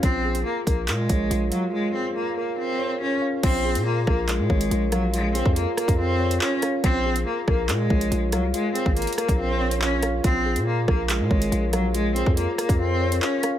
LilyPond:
<<
  \new Staff \with { instrumentName = "Tine electric piano" } { \time 4/4 \key des \major \tempo 4 = 141 f'8 aes'8 f'8 bes'8 f'8 des''8 f'8 f''8 | f'8 aes'8 f'8 bes'8 f'8 des''8 f'8 f''8 | f'8 aes'8 f'8 bes'8 f'8 des''8 f'8 f''8 | f'8 aes'8 f'8 bes'8 f'8 des''8 f'8 f''8 |
f'8 aes'8 f'8 bes'8 f'8 des''8 f'8 f''8 | f'8 aes'8 f'8 bes'8 f'8 des''8 f'8 f''8 | f'8 aes'8 f'8 bes'8 f'8 des''8 f'8 f''8 | f'8 aes'8 f'8 bes'8 f'8 des''8 f'8 f''8 | }
  \new Staff \with { instrumentName = "Cello" } { \time 4/4 \key des \major c'4 bes8 bes8 aes4. ges8 | aes8 c'8 bes8 bes8 c'4 des'8 r8 | c'4 bes8 bes8 aes4. ges8 | aes8 c'8 bes8 bes8 c'4 des'8 r8 |
c'4 bes8 bes8 aes4. ges8 | aes8 c'8 bes8 bes8 c'4 des'8 r8 | c'4 bes8 bes8 aes4. ges8 | aes8 c'8 bes8 bes8 c'4 des'8 r8 | }
  \new Staff \with { instrumentName = "808-style bass" } { \clef bass \time 4/4 \key des \major bes,,4 r8 bes,,8 bes,8 bes,,8 bes,,8 r8 | r1 | bes,,8. bes,8. bes,,8. bes,16 aes,,8 bes,,4~ | bes,,8. f,8 r8 f,4~ f,16 r4 |
bes,,4 r8 bes,,8 bes,8 bes,,8 bes,,8 c,8 | r8. aes,,8 r8 bes,,2~ bes,,16 | bes,,8. bes,8. bes,,8. bes,16 aes,,8 bes,,4~ | bes,,8. f,8 r8 f,4~ f,16 r4 | }
  \new DrumStaff \with { instrumentName = "Drums" } \drummode { \time 4/4 <hh bd>8. hh16 r8 <hh bd>8 <hc hh>8 <hh bd>8 hh8 hh8 | r4 r4 r4 r4 | <cymc hh bd>8. hh16 r8 <bd ss>8 <hc hh>8 bd16 hh16 hh8 <hh ss>8 | hh8 hh16 bd16 hh8 <hh ss>16 <hh bd>16 r8. hh16 hc8 <hh ss>8 |
<hh bd>8. hh16 r8 <bd ss>8 <hc hh>8 bd16 hh16 hh8 <hh ss>8 | hh8 hh16 bd16 hh32 hh32 hh32 hh32 <hh ss>16 <hh bd>16 r8. hh16 hc8 <hh ss>8 | <hh bd>8. hh16 r8 <bd ss>8 <hc hh>8 bd16 hh16 hh8 <hh ss>8 | hh8 hh16 bd16 hh8 <hh ss>16 <hh bd>16 r8. hh16 hc8 <hh ss>8 | }
>>